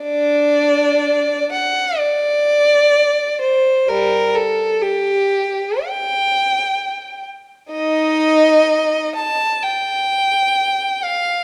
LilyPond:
\new Staff \with { instrumentName = "Violin" } { \time 4/4 \key g \minor \tempo 4 = 64 <d' d''>4. fis''8 d''4. c''8 | <g bes'>8 a'8 g'4 g''4. r8 | <ees' ees''>4. a''8 g''4. f''8 | }